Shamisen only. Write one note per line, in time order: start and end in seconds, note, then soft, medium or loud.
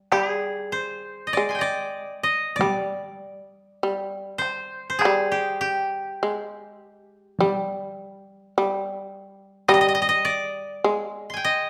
0.00 0.11 G3 soft
0.12 1.36 G3 medium
1.37 2.59 G#3 medium
2.61 3.82 G3 medium
3.83 5.02 G3 medium
5.05 6.22 G3 medium
6.23 7.39 G#3 medium
7.40 8.55 G3 medium
8.58 9.68 G3 medium
9.69 10.83 G3 medium
10.84 11.70 G#3 medium